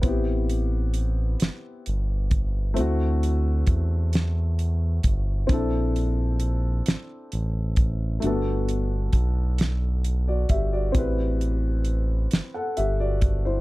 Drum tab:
HH |xxxxxx|xxxxxx|xxxxxx|xxxxxx|
SD |---o--|---o--|---o--|---o--|
BD |o----o|--o--o|o----o|--o--o|

HH |xxxxxx|
SD |---o--|
BD |o----o|